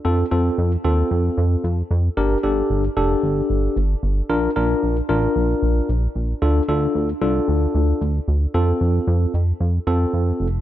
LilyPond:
<<
  \new Staff \with { instrumentName = "Tine electric piano" } { \time 4/4 \key f \major \tempo 4 = 113 <c' f' a'>8 <c' f' a'>8. r16 <c' f' a'>4. r4 | <d' g' bes'>8 <d' g' a'>8. r16 <d' g' a'>4. r4 | <d' f' bes'>8 <d' f' bes'>8. r16 <d' f' bes'>4. r4 | <d' f' a'>8 <d' f' a'>8. r16 <d' f' a'>4. r4 |
<c' f' a'>4. r4 <c' f' a'>4 r8 | }
  \new Staff \with { instrumentName = "Analog synth bass" } { \clef bass \time 4/4 \key f \major f,8 f,8 f,8 ees,8 f,8 f,8 f,8 f,8 | g,,8 g,,8 g,,8 f,,8 g,,8 g,,8 g,,8 g,,8 | bes,,8 bes,,8 bes,,8 a,,8 bes,,8 bes,,8 bes,,8 bes,,8 | d,8 d,8 d,8 c,8 d,8 d,8 d,8 d,8 |
f,8 f,8 f,8 f,8 f,8 f,8 f,8 f,,8 | }
>>